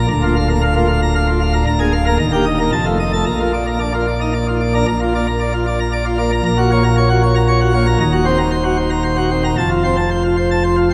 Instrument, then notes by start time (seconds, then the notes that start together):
pipe organ
0.10 D1 D2 A#5
0.23 A#3 F4
0.36 F5
0.49 A#3 A#5
0.62 F5
0.76 A#3 F4
0.89 F5
1.02 A#5
1.15 F5
1.28 F4
1.41 F5
1.54 A#5
1.67 D1 D2 A#5
1.80 A#3 G#4
1.93 F5
2.06 A#3 A#5
2.19 D#1 D#2 A#5
2.33 A#3 G4
2.46 D#5
2.59 A#3 A#5
2.72 F1 F2 A5
2.86 A3 F4
3.00 D#5
3.13 A3 A5
3.26 A#1 A#2 A#5
3.40 A#3 F4
3.53 D5
3.67 A#3 A#5
3.80 D4 D5
3.94 A#3 F4
4.08 D5
4.21 D#4 A#5
4.34 D5
4.48 F4
4.61 D5
4.74 D4 A#5
4.88 A#1 A#2 A#5
5.02 F4
5.15 A#3 D5
5.27 A#5
5.41 D5
5.54 F4
5.67 D5
5.80 A#5
5.93 D5
6.06 F4
6.19 A#3 D5
6.32 A#5
6.46 A#1 A#2 A#5
6.58 F#4
6.71 A#3 C#5
6.84 A#5
6.97 C#5
7.10 F#4
7.23 C#5
7.35 A#5
7.48 C#5
7.61 F#4
7.74 A#3 C#5
7.87 A#5
8.00 D#1 D#2 A#5
8.13 F#4
8.26 C4 C5
8.38 A#5
8.51 C5
8.64 F#4
8.77 C5
8.90 A#5
9.04 C5
9.17 F#4
9.31 C4 C5
9.44 A#5
9.57 F1 F2 A5
9.71 F4
9.84 C4 C5
9.97 A5
10.11 C5
10.24 F4
10.37 C5
10.51 A5
10.64 C5
10.77 F4
10.90 C4 C5